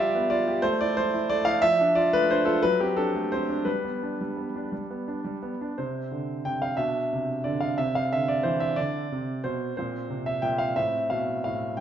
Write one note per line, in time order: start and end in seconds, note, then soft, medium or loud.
0.00 0.61 G3 medium
0.00 0.31 F4 soft
0.00 0.24 G4 soft
0.00 0.30 D5 medium
0.00 0.30 E5 medium
0.15 0.41 B3 soft
0.30 0.57 F4 soft
0.30 0.63 D5 medium
0.48 0.64 G4 soft
0.62 0.97 A3 medium
0.62 0.79 C5 medium
0.81 1.07 E4 soft
0.81 0.97 D5 medium
0.97 1.23 A3 soft
0.97 1.29 C5 medium
1.14 1.39 E4 soft
1.30 1.56 A3 medium
1.30 1.45 D5 medium
1.45 1.62 E4 medium
1.45 1.61 F5 medium
1.62 2.58 F3 medium
1.62 1.94 E5 loud
1.81 2.06 D4 soft
1.95 2.22 F4 soft
1.95 2.11 D5 medium
2.13 2.39 A3 soft
2.13 2.29 B4 medium
2.31 2.56 D4 soft
2.31 2.46 C5 medium
2.45 2.62 F4 soft
2.45 2.62 A4 medium
2.62 3.64 F#3 medium
2.62 2.79 B4 medium
2.80 3.07 C4 soft
2.80 2.96 G4 medium
2.97 3.24 D4 soft
2.97 3.31 A4 medium
3.15 3.42 A3 soft
3.32 3.60 C4 soft
3.32 3.66 C5 medium
3.49 3.66 D4 soft
3.65 4.19 G3 soft
3.65 4.72 B4 medium
3.84 4.13 B3 soft
4.03 4.31 D4 soft
4.21 4.48 G3 soft
4.37 4.65 B3 soft
4.56 4.83 D4 soft
4.72 5.23 G3 soft
4.91 5.18 B3 soft
5.08 5.36 D4 soft
5.24 5.53 G3 soft
5.43 5.71 B3 soft
5.61 5.78 D4 soft
5.78 6.05 C3 soft
5.78 6.75 C4 soft
5.78 6.45 C5 soft
6.11 6.38 D3 soft
6.45 6.72 C3 soft
6.45 6.62 G5 medium
6.62 6.78 F5 medium
6.77 7.05 B2 soft
6.77 7.74 D4 soft
6.77 7.44 E5 medium
7.13 7.39 C3 soft
7.44 7.72 D3 soft
7.44 7.61 D5 medium
7.61 7.78 F5 medium
7.78 8.05 C3 soft
7.78 9.74 C4 soft
7.78 7.94 E5 medium
7.95 8.12 F5 medium
8.13 8.39 D3 soft
8.13 8.28 E5 medium
8.28 8.45 D5 medium
8.43 8.71 E3 soft
8.43 8.60 C5 medium
8.60 8.77 E5 medium
8.76 9.04 D3 soft
8.76 9.43 D5 medium
9.12 9.38 C3 soft
9.44 9.71 B2 soft
9.44 9.76 C5 medium
9.77 10.05 A#2 soft
9.77 10.73 C4 soft
9.77 10.27 C5 medium
10.10 10.37 C3 soft
10.26 10.43 E5 medium
10.42 10.70 A#2 soft
10.42 10.60 G5 medium
10.58 10.76 F5 medium
10.76 11.04 A2 soft
10.76 11.74 C4 soft
10.76 11.10 E5 medium
11.10 11.38 B2 soft
11.10 11.43 F5 soft
11.44 11.72 A2 soft
11.44 11.79 F5 medium
11.77 11.80 G5 soft